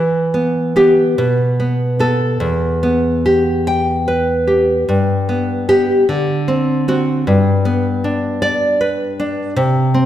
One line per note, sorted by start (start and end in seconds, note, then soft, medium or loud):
0.00 1.14 E3 medium
0.34 0.75 B3 medium
0.76 1.14 B3 medium
0.76 1.14 G4 medium
1.18 2.37 B2 medium
1.60 1.98 B3 medium
1.99 2.37 B3 medium
1.99 2.37 A4 medium
2.40 4.83 E2 medium
2.83 4.07 B3 medium
3.26 3.67 G4 medium
3.67 4.31 G5 medium
4.08 4.88 B4 medium
4.47 4.88 G4 medium
4.89 6.03 G2 medium
5.29 5.67 B3 medium
5.69 6.04 B3 medium
5.69 6.04 G4 medium
6.09 7.24 D3 medium
6.48 6.87 C4 medium
6.88 7.23 C4 medium
6.88 7.23 F#4 medium
7.27 9.53 G2 medium
7.65 8.79 B3 medium
8.04 9.18 D4 medium
8.42 9.03 D5 medium
8.81 9.58 B4 medium
9.20 9.58 D4 medium
9.56 10.06 C3 medium
9.94 10.06 C4 medium